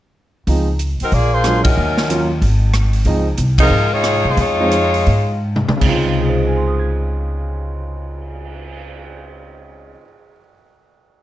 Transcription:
0.47 0.96 C#2 medium
0.47 0.66 F3 soft
0.47 0.66 G#3 soft
0.47 0.66 C4 soft
0.47 0.67 D#4 medium
0.47 kick soft
0.47 open hi-hat soft
0.79 closed hi-hat soft
1.00 1.13 F#3 medium
1.00 1.13 C4 medium
1.00 1.13 D#4 medium
1.00 1.13 A#4 medium
1.00 muted upright bass stroke soft
1.00 open hi-hat soft
1.12 1.74 A#1 medium
1.12 1.32 A#3 medium
1.12 1.32 F4 medium
1.12 1.31 G#4 medium
1.12 1.33 D5 medium
1.12 kick soft
1.12 open hi-hat soft
1.32 1.65 A#3 medium
1.32 1.65 F4 medium
1.32 1.65 G#4 medium
1.32 1.65 C5 medium
1.44 1.63 F#3 medium
1.44 1.63 G#3 soft
1.44 1.64 D4 soft
1.44 1.64 F4 medium
1.44 cross-stick medium
1.44 closed hi-hat soft
1.63 2.25 F#3 medium
1.63 2.25 C#4 medium
1.63 2.25 D#4 medium
1.63 2.25 A#4 medium
1.63 kick medium
1.63 ride medium
1.77 2.39 D#2 medium
1.97 snare soft
2.09 2.28 F#3 medium
2.09 2.28 A#3 medium
2.09 2.28 C#4 soft
2.09 2.28 F4 medium
2.09 closed hi-hat soft
2.42 3.03 G#1 medium
2.42 kick soft
2.42 open hi-hat soft
2.73 cross-stick medium
2.73 closed hi-hat soft
2.93 open hi-hat soft
3.05 3.36 C#2 medium
3.05 3.25 F3 soft
3.05 3.25 G#3 soft
3.05 3.25 C4 soft
3.05 3.25 D#4 medium
3.05 kick soft
3.05 open hi-hat soft
3.38 3.69 C2 medium
3.38 closed hi-hat soft
3.58 3.70 F3 medium
3.58 3.71 G#3 medium
3.58 3.90 G#3 medium
3.58 3.71 C4 medium
3.58 3.71 D#4 medium
3.58 3.91 D#4 medium
3.58 3.91 F4 medium
3.58 3.91 A#4 medium
3.58 kick medium
3.58 ride medium
3.70 4.21 G#2 medium
3.93 4.26 G#3 medium
3.93 4.27 D#4 medium
3.93 4.26 F4 medium
3.93 4.26 C#5 loud
4.04 cross-stick medium
4.04 closed hi-hat soft
4.25 4.36 C2 medium
4.25 4.40 C5 medium
4.29 4.39 G#3 medium
4.29 4.38 D#4 medium
4.29 4.39 F4 medium
4.37 5.04 F2 medium
4.37 5.41 G#3 medium
4.37 5.41 D#4 medium
4.37 5.41 F4 medium
4.37 5.41 C#5 medium
4.37 kick soft
4.37 open hi-hat soft
4.60 4.72 F3 medium
4.60 4.72 G#3 medium
4.60 4.72 C4 medium
4.60 4.72 D#4 medium
4.71 closed hi-hat soft
4.94 open hi-hat soft
5.07 5.63 G#2 medium
5.07 kick soft
5.07 open hi-hat soft
5.56 mid tom medium
5.68 muted upright bass stroke soft
5.68 mid tom medium
5.77 9.92 C#3 medium
5.77 9.95 G#3 soft
5.81 9.92 C#2 medium
5.81 9.97 C4 soft
5.81 kick medium
5.81 crash medium
5.86 10.01 D#4 soft
5.86 10.04 F4 medium
6.05 cymbal swell soft
6.22 10.32 G#4 soft
6.29 10.35 C5 soft
6.37 10.40 D#5 soft
6.47 10.44 G#5 soft
6.57 10.49 C6 soft
6.68 10.55 D#6 soft
6.79 10.60 G#6 soft

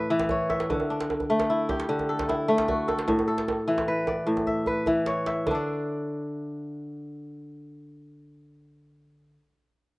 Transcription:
0.00 0.75 A2 medium
0.00 1.13 B4 medium
0.00 0.37 D5 medium
0.00 0.49 E5 medium
0.10 0.75 E3 medium
0.19 djembe slap medium
0.19 djembe tone medium
0.29 0.96 C#5 medium
0.29 djembe bass medium
0.50 1.53 E5 medium
0.50 djembe tone medium
0.60 djembe slap medium
0.70 1.88 D3 medium
0.70 djembe bass medium
0.80 djembe tone medium
0.90 2.58 D4 medium
1.01 djembe slap medium
1.10 djembe tone medium
1.20 djembe bass medium
1.30 2.48 A3 medium
1.30 djembe slap soft
1.40 djembe slap medium
1.40 djembe tone medium
1.50 2.28 E4 medium
1.60 djembe slap soft
1.69 2.74 G4 medium
1.69 djembe tone medium
1.69 djembe bass medium
1.80 djembe slap medium
1.89 3.13 D3 medium
1.99 djembe tone medium
2.09 2.88 A4 medium
2.09 djembe slap soft
2.19 djembe slap medium
2.19 djembe bass medium
2.29 3.85 E4 medium
2.29 djembe tone medium
2.48 4.48 A3 medium
2.58 djembe slap medium
2.58 djembe tone medium
2.68 4.14 F#4 medium
2.68 djembe bass medium
2.88 3.27 A4 medium
2.88 djembe tone medium
2.98 djembe slap medium
3.08 4.25 A2 medium
3.08 djembe bass medium
3.19 djembe tone medium
3.28 4.59 A4 medium
3.38 djembe slap medium
3.48 djembe tone medium
3.68 4.86 E3 medium
3.68 djembe slap soft
3.78 djembe slap medium
3.78 djembe tone medium
3.88 4.67 B4 medium
3.88 djembe slap soft
4.07 5.13 D5 medium
4.07 djembe tone medium
4.27 5.52 A2 medium
4.37 djembe tone medium
4.47 5.26 E5 medium
4.47 djembe bass soft
4.66 5.90 B4 medium
4.66 djembe bass soft
4.86 5.52 E3 medium
4.86 djembe bass medium
5.06 6.22 C#5 medium
5.06 djembe slap soft
5.26 6.30 E5 medium
5.26 djembe slap medium
5.47 9.36 D3 medium
5.47 djembe bass medium
5.51 9.38 D4 medium
5.51 9.40 D5 medium

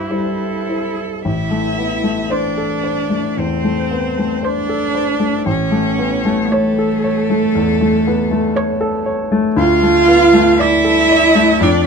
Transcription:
0.00 1.27 G2 soft
0.00 0.10 E4 soft
0.00 1.01 E4 soft
0.00 0.13 G4 soft
0.00 0.11 C5 soft
0.00 0.69 C5 soft
0.10 0.65 G3 soft
0.10 0.65 E4 soft
0.10 1.24 A4 medium
0.10 0.65 C5 soft
0.69 1.21 E4 soft
0.69 1.21 C5 soft
1.25 3.35 A1 soft
1.25 2.33 E4 medium
1.25 2.33 E5 medium
1.51 1.94 A3 soft
1.78 2.05 B3 soft
2.04 2.47 A3 soft
2.30 3.40 D4 medium
2.30 2.74 C5 soft
2.30 3.13 C5 soft
2.30 3.41 D5 medium
2.58 3.01 A4 soft
2.84 3.27 C5 soft
3.10 3.54 A3 soft
3.37 3.81 E2 soft
3.37 4.46 C4 medium
3.37 4.47 C5 medium
3.64 4.07 A3 soft
3.91 4.18 B3 soft
4.18 4.60 A3 soft
4.43 5.47 D4 medium
4.43 4.85 C5 soft
4.43 5.24 C5 medium
4.43 5.48 D5 medium
4.69 5.11 A4 soft
4.95 5.37 C5 soft
5.20 5.47 A3 soft
5.46 7.51 A1 medium
5.46 6.53 C#4 medium
5.46 6.55 C#5 medium
5.72 6.15 A3 soft
5.98 6.26 B3 soft
6.25 6.68 A3 soft
6.51 9.07 A3 medium
6.51 9.08 A4 medium
6.51 6.94 C#5 medium
6.51 7.31 C#5 medium
6.79 7.20 A4 soft
7.04 7.45 C#5 medium
7.30 7.71 A3 soft
7.55 7.96 E2 medium
7.81 8.22 A3 medium
8.07 8.32 B3 medium
8.31 8.72 A3 soft
8.56 8.97 C#5 medium
8.56 9.34 C#5 medium
8.81 9.22 A4 medium
9.06 9.48 C#5 medium
9.32 9.58 A3 medium
9.56 11.57 D2 medium
9.56 10.56 F4 loud
9.56 10.62 F5 loud
9.83 10.24 A3 medium
10.08 10.34 B3 soft
10.33 10.74 A3 medium
10.59 11.64 E4 loud
10.59 11.00 D5 medium
10.59 11.38 D5 medium
10.59 11.61 E5 loud
10.84 11.26 A4 medium
11.11 11.52 D5 medium
11.35 11.61 A3 medium
11.61 11.87 F2 medium
11.61 11.87 D4 medium
11.61 11.87 D5 medium

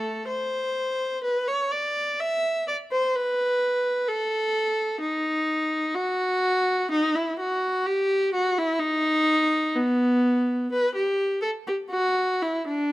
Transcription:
0.00 0.25 A3 medium
0.00 0.29 A4 medium
0.28 1.22 C5 medium
1.24 1.47 B4 medium
1.48 1.72 C#5 medium
1.72 2.19 D5 medium
2.20 2.67 E5 medium
2.68 2.76 D5 medium
2.92 3.14 C5 medium
3.15 4.09 B4 medium
4.08 5.02 A4 medium
5.01 5.93 D#4 medium
5.95 6.90 F#4 medium
6.91 7.14 D#4 medium
7.15 7.39 E4 medium
7.39 7.85 F#4 medium
7.86 8.34 G4 medium
8.34 8.57 F#4 medium
8.58 8.81 E4 medium
8.79 9.76 D#4 medium
9.76 10.71 B3 medium
10.72 10.95 B4 medium
10.95 11.42 G4 medium
11.42 11.50 A4 medium
11.67 11.75 G4 medium
11.90 12.39 F#4 medium
12.42 12.66 E4 medium
12.67 12.92 D4 medium

